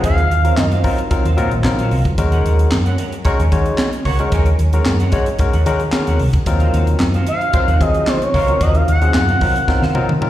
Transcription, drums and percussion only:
0.04 kick, closed hi-hat
0.18 closed hi-hat
0.31 closed hi-hat
0.45 closed hi-hat
0.57 snare, clap
0.72 closed hi-hat
0.84 kick, open hi-hat
0.98 closed hi-hat
1.11 kick, closed hi-hat
1.25 closed hi-hat
1.38 closed hi-hat
1.51 closed hi-hat
1.64 snare, clap
1.79 closed hi-hat
1.91 open hi-hat
2.05 kick, closed hi-hat
2.18 kick, closed hi-hat
2.32 closed hi-hat
2.46 closed hi-hat
2.59 closed hi-hat
2.71 snare, clap
2.86 closed hi-hat
2.98 closed hi-hat
3.12 closed hi-hat
3.25 kick, closed hi-hat
3.40 closed hi-hat
3.52 kick, closed hi-hat
3.66 closed hi-hat
3.78 snare, clap
3.93 closed hi-hat
4.05 kick, open hi-hat
4.19 closed hi-hat
4.32 kick, closed hi-hat
4.46 closed hi-hat
4.59 closed hi-hat
4.73 closed hi-hat
4.85 snare, clap
5.00 closed hi-hat
5.12 kick, closed hi-hat
5.26 closed hi-hat
5.39 kick, closed hi-hat
5.53 closed hi-hat
5.66 closed hi-hat
5.80 closed hi-hat
5.92 snare, clap
6.07 closed hi-hat
6.19 open hi-hat
6.33 kick, closed hi-hat
6.46 kick, closed hi-hat
6.60 closed hi-hat
6.74 closed hi-hat
6.87 closed hi-hat
6.99 snare, clap
7.14 closed hi-hat
7.27 closed hi-hat
7.41 closed hi-hat
7.53 kick, closed hi-hat
7.68 closed hi-hat
7.81 kick, closed hi-hat
7.94 closed hi-hat
8.07 snare, clap
8.22 closed hi-hat
8.34 kick, open hi-hat
8.48 closed hi-hat
8.61 kick, closed hi-hat
8.75 closed hi-hat
8.88 closed hi-hat
9.02 closed hi-hat
9.14 snare, clap
9.29 closed hi-hat
9.41 kick, open hi-hat
9.56 closed hi-hat
9.68 kick, snare
9.83 snare
9.95 high tom
10.09 high tom
10.22 mid tom

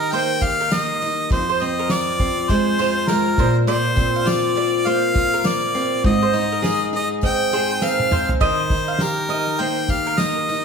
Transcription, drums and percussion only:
0.01 shaker
0.10 tambourine, shaker
0.41 kick, tambourine, shaker
0.60 shaker
0.71 snare, tambourine, shaker
1.01 tambourine, shaker
1.29 kick, tambourine, shaker
1.60 tambourine, shaker
1.78 shaker
1.90 snare, tambourine, shaker
2.19 kick, tambourine, shaker
2.38 snare, shaker
2.49 kick, tambourine, shaker
2.78 tambourine, shaker
3.07 snare, tambourine, shaker
3.38 kick, tambourine, shaker
3.55 shaker
3.67 tambourine, shaker
3.97 kick, tambourine, shaker
4.27 snare, tambourine, shaker
4.56 shaker
4.74 shaker
4.85 tambourine, shaker
5.15 kick, tambourine, shaker
5.44 snare, tambourine, shaker
5.75 tambourine, shaker
6.04 kick, tambourine, shaker
6.33 tambourine, shaker
6.64 snare, tambourine, shaker
6.93 tambourine, shaker
7.21 kick, tambourine, shaker
7.52 tambourine, shaker
7.71 shaker
7.82 snare, tambourine
8.00 high tom
8.12 mid tom, tambourine
8.29 floor tom
8.40 kick, shaker
8.70 kick, tambourine, shaker
8.99 snare, tambourine, shaker
9.29 shaker
9.47 snare, shaker
9.58 tambourine, shaker
9.89 kick, tambourine, shaker
10.17 snare, tambourine, shaker
10.48 tambourine, shaker

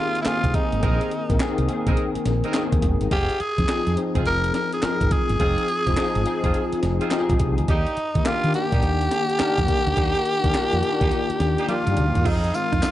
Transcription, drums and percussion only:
0.15 closed hi-hat
0.26 snare, clap, closed hi-hat
0.44 kick, closed hi-hat
0.54 kick, closed hi-hat
0.72 closed hi-hat
0.83 kick, closed hi-hat
1.01 closed hi-hat
1.11 closed hi-hat
1.30 kick, closed hi-hat
1.40 snare, clap, closed hi-hat
1.58 closed hi-hat
1.69 closed hi-hat
1.87 kick, closed hi-hat
1.97 closed hi-hat
2.15 closed hi-hat
2.25 snare, closed hi-hat
2.44 closed hi-hat
2.54 snare, clap, closed hi-hat
2.72 kick, closed hi-hat
2.82 kick, closed hi-hat
3.01 closed hi-hat
3.11 kick, closed hi-hat
3.30 closed hi-hat
3.40 closed hi-hat
3.58 kick, closed hi-hat
3.69 snare, clap, closed hi-hat
3.87 closed hi-hat
3.97 closed hi-hat
4.15 kick, closed hi-hat
4.26 closed hi-hat
4.44 closed hi-hat
4.54 snare, closed hi-hat
4.72 closed hi-hat
4.83 snare, clap, closed hi-hat
5.01 kick, closed hi-hat
5.11 kick, closed hi-hat
5.29 closed hi-hat
5.40 kick, closed hi-hat
5.58 closed hi-hat
5.68 closed hi-hat
5.87 kick, closed hi-hat
5.97 snare, clap, closed hi-hat
6.15 closed hi-hat
6.26 closed hi-hat
6.44 kick, closed hi-hat
6.54 closed hi-hat
6.73 closed hi-hat
6.83 snare, closed hi-hat
7.01 closed hi-hat
7.11 snare, clap, closed hi-hat
7.30 kick, closed hi-hat
7.39 kick, closed hi-hat
7.58 closed hi-hat
7.68 kick, closed hi-hat
7.87 closed hi-hat
7.97 closed hi-hat
8.15 kick, closed hi-hat
8.25 snare, clap, closed hi-hat
8.44 closed hi-hat
8.54 closed hi-hat
8.72 kick, closed hi-hat
8.83 closed hi-hat
9.01 closed hi-hat
9.11 snare, closed hi-hat
9.30 closed hi-hat
9.40 snare, clap, closed hi-hat
9.58 kick, closed hi-hat
9.68 kick, closed hi-hat
9.87 closed hi-hat
9.97 kick, closed hi-hat
10.15 closed hi-hat
10.26 closed hi-hat
10.44 kick, closed hi-hat
10.54 snare, clap, closed hi-hat
10.72 closed hi-hat
10.83 closed hi-hat
11.01 kick, closed hi-hat
11.11 closed hi-hat
11.30 closed hi-hat
11.40 snare, closed hi-hat
11.58 closed hi-hat
11.69 closed hi-hat, high tom
11.87 closed hi-hat, mid tom
11.97 closed hi-hat, mid tom
12.15 closed hi-hat, floor tom
12.26 kick, closed hi-hat, crash
12.44 closed hi-hat
12.54 closed hi-hat, tambourine
12.73 kick, closed hi-hat
12.83 snare, clap, closed hi-hat, tambourine

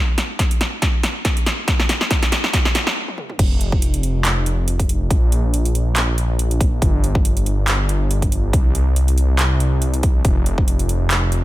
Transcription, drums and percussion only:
0.18 snare, closed hi-hat
0.39 kick, snare, closed hi-hat
0.51 closed hi-hat
0.61 snare, closed hi-hat
0.82 kick, snare, closed hi-hat
1.03 snare, closed hi-hat
1.25 kick, snare, closed hi-hat
1.37 closed hi-hat
1.46 snare, closed hi-hat
1.68 kick, snare, closed hi-hat
1.79 snare
1.89 snare, closed hi-hat
2.01 snare
2.11 kick, snare, closed hi-hat
2.23 snare, closed hi-hat
2.32 snare, closed hi-hat
2.44 snare
2.53 kick, snare, closed hi-hat
2.65 snare
2.75 snare, closed hi-hat
2.87 snare
3.08 high tom
3.18 mid tom
3.30 mid tom
3.39 kick, closed hi-hat, crash
3.61 closed hi-hat
3.72 kick
3.82 closed hi-hat
3.94 closed hi-hat
4.03 closed hi-hat
4.25 clap, closed hi-hat
4.46 closed hi-hat
4.68 closed hi-hat
4.79 kick, closed hi-hat
4.89 closed hi-hat
5.11 kick, closed hi-hat
5.32 closed hi-hat
5.54 closed hi-hat
5.65 closed hi-hat
5.75 closed hi-hat
5.96 clap, closed hi-hat
6.18 closed hi-hat
6.39 closed hi-hat
6.51 closed hi-hat
6.61 kick, closed hi-hat
6.82 kick, closed hi-hat
7.04 closed hi-hat
7.15 kick
7.25 closed hi-hat
7.37 closed hi-hat
7.46 closed hi-hat
7.68 clap, closed hi-hat
7.89 closed hi-hat
8.11 closed hi-hat
8.22 kick, closed hi-hat
8.32 closed hi-hat
8.53 kick, closed hi-hat
8.75 closed hi-hat
8.96 closed hi-hat
9.08 closed hi-hat
9.18 closed hi-hat
9.39 clap, closed hi-hat
9.60 closed hi-hat
9.82 closed hi-hat
9.94 closed hi-hat
10.03 kick, closed hi-hat
10.25 kick, closed hi-hat
10.46 closed hi-hat
10.58 kick
10.68 closed hi-hat
10.79 closed hi-hat
10.89 closed hi-hat
11.11 clap, closed hi-hat
11.32 closed hi-hat

